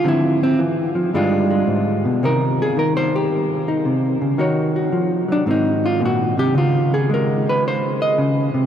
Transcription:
0.04 D3 F3 C4
0.08 E4
0.43 C4
0.59 E3
0.95 F3
1.14 G2 G3 G#3 D4 F4
1.51 G#3
1.67 G#2
2.05 B2
2.23 C3 D#3 D#4 A#4
2.62 G#4
2.77 D#3 A#4
2.97 C5
3.16 G4
3.68 D#4
3.85 C3
4.21 C#3
4.38 D#3 D#4 F#4 C#5
4.76 F#4
4.92 F3
5.28 F#3 D4
5.46 G#2 D#3 C4
5.51 D#4
5.86 F4
6.01 A#2
6.05 F#4
6.37 C3 G4
6.55 C#3 F4
6.94 G#4
7.09 G#3
7.14 A#4
7.49 B4
7.68 C5
8.02 D#5
8.18 C#3
8.54 C3

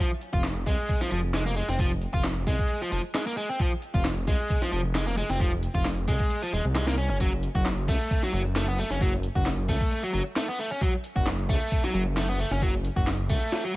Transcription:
0.00 F3
0.21 closed hi-hat
0.33 F1 F4, kick
0.44 snare, clap, closed hi-hat
0.66 C2 G#3, kick, closed hi-hat
0.89 kick, closed hi-hat
1.01 F3, snare
1.12 F1 F3, closed hi-hat
1.34 G#3, snare, clap, closed hi-hat
1.46 A#3
1.57 G#3, closed hi-hat
1.69 F1 C4, snare
1.79 F3, kick, open hi-hat
1.91 closed hi-hat
2.02 closed hi-hat
2.14 F1 F4, kick
2.24 snare, clap, closed hi-hat
2.47 C2 G#3, kick, closed hi-hat
2.59 kick
2.69 closed hi-hat
2.82 F3
2.92 F1 F3, closed hi-hat
3.14 G#3, snare, clap, closed hi-hat
3.27 A#3
3.37 G#3, closed hi-hat
3.49 C4
3.60 F3, kick, closed hi-hat
3.82 closed hi-hat
3.94 F1 F4, kick
4.05 snare, clap, closed hi-hat
4.27 C2 G#3, kick, closed hi-hat
4.50 kick, closed hi-hat
4.62 F3, snare
4.72 F1 F3, closed hi-hat
4.95 G#3, snare, clap, closed hi-hat
5.07 A#3
5.17 G#3, closed hi-hat
5.30 F1 C4, snare
5.40 F3, kick, open hi-hat
5.52 closed hi-hat
5.63 closed hi-hat
5.75 F1 F4, kick
5.85 snare, clap, closed hi-hat
6.08 C2 G#3, kick, closed hi-hat
6.20 kick
6.30 closed hi-hat
6.42 F3
6.53 D#1 G#3, closed hi-hat
6.65 C2
6.75 G#3, snare, clap, closed hi-hat
6.87 A#3, snare, closed hi-hat
6.98 C#4, closed hi-hat
7.10 F#1 C#4
7.20 F#3, kick, closed hi-hat
7.43 closed hi-hat
7.55 F#1 F#4, kick
7.66 snare, clap, closed hi-hat
7.88 C#2 A3, kick, closed hi-hat
8.11 kick, closed hi-hat
8.23 F#3, snare
8.33 F#1 F#3, closed hi-hat
8.56 A3, snare, clap, closed hi-hat
8.68 B3
8.79 A3, closed hi-hat
8.90 F#1 C#4, snare
9.01 F#3, kick, open hi-hat
9.13 closed hi-hat
9.23 closed hi-hat
9.35 F#1 F#4, kick
9.46 snare, clap, closed hi-hat
9.68 C#2 A3, kick, closed hi-hat
9.81 kick
9.91 closed hi-hat
10.03 F#3
10.14 F#1 F#3, closed hi-hat
10.36 A3, snare, clap, closed hi-hat
10.48 B3
10.59 A3, closed hi-hat
10.71 C#4
10.81 F#3, kick, closed hi-hat
11.04 closed hi-hat
11.16 F#1 F#4, kick
11.26 snare, clap, closed hi-hat
11.49 C#2 A3, kick, closed hi-hat
11.72 kick, closed hi-hat
11.84 F#3, snare
11.94 F#1 F#3, closed hi-hat
12.17 A3, snare, clap, closed hi-hat
12.29 B3
12.39 A3, closed hi-hat
12.51 F#1 C#4, snare
12.62 F#3, kick, open hi-hat
12.74 closed hi-hat
12.85 closed hi-hat
12.96 F#1 F#4, kick
13.07 snare, clap, closed hi-hat
13.29 C#2 A3, kick, closed hi-hat
13.52 snare, closed hi-hat
13.64 F#3

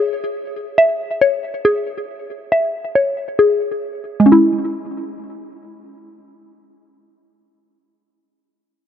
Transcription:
Already playing: G#4 C#5 E5
0.78 E5
1.21 C#5
1.65 G#4
2.52 E5
2.95 C#5
3.39 G#4
4.20 G#3
4.26 C#4
4.32 E4

